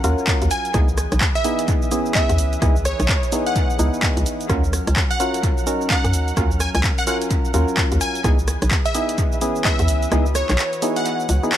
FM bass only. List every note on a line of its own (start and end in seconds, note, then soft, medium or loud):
0.04 0.15 D#2 medium
0.42 0.49 D#2 medium
0.74 1.06 C#2 loud
1.12 1.19 B1 loud
2.29 2.40 E2 medium
2.38 2.57 C#2 medium
2.62 2.94 C#2 loud
3.00 3.06 B1 loud
3.79 3.90 C#2 medium
4.17 4.24 C#2 medium
4.50 4.81 D#2 loud
4.87 4.94 C#2 loud
6.04 6.15 F#2 medium
6.13 6.32 D#2 medium
6.37 6.69 D#2 loud
6.75 6.81 C#2 loud
7.54 7.65 D#2 medium
7.92 7.99 D#2 medium
8.24 8.56 C#2 loud
8.62 8.69 B1 loud
9.79 9.90 E2 medium
9.88 10.07 C#2 medium
10.12 10.44 C#2 loud
10.50 10.56 B1 medium
11.29 11.40 C#2 medium